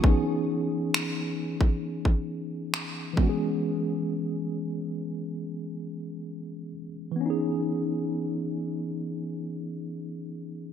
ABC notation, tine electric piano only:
X:1
M:4/4
L:1/8
Q:1/4=67
K:C#m
V:1 name="Tine electric piano"
[E,B,CDG]6- [E,B,CDG] [E,G,B,CFG]- | [E,G,B,CFG]6- [E,G,B,CFG] z | [E,B,CDG]8 |]